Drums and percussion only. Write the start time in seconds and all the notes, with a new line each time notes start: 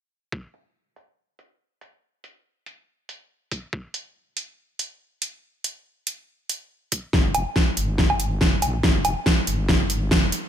0.32 kick
0.54 closed hi-hat
0.96 closed hi-hat
1.39 closed hi-hat
1.81 closed hi-hat
2.24 closed hi-hat
2.66 closed hi-hat
3.09 closed hi-hat
3.51 kick, closed hi-hat
3.73 kick
3.94 closed hi-hat
4.37 closed hi-hat
4.79 closed hi-hat
5.22 closed hi-hat
5.64 closed hi-hat
6.07 closed hi-hat
6.49 closed hi-hat
6.92 kick, closed hi-hat
7.13 kick, snare
7.35 closed hi-hat, low woodblock
7.56 kick, snare
7.77 closed hi-hat
7.98 kick, snare
8.10 low woodblock
8.20 closed hi-hat
8.41 kick, snare
8.62 closed hi-hat, low woodblock
8.83 kick, snare
9.05 closed hi-hat, low woodblock
9.26 kick, snare
9.47 closed hi-hat
9.69 kick, snare
9.90 closed hi-hat
10.11 kick, snare
10.32 closed hi-hat